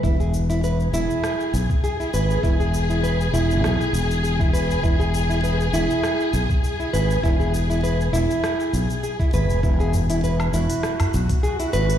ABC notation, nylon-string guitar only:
X:1
M:4/4
L:1/16
Q:"Swing 16ths" 1/4=100
K:E
V:1 name="Nylon-string guitar"
E G z E B z E4 z2 G E B2 | E G z E B z E4 z2 G E B2 | E G z E B z E4 z2 G E B2 | E G z E B z E4 z2 G E B2 |
E G z E B z E4 z2 G E B2 |]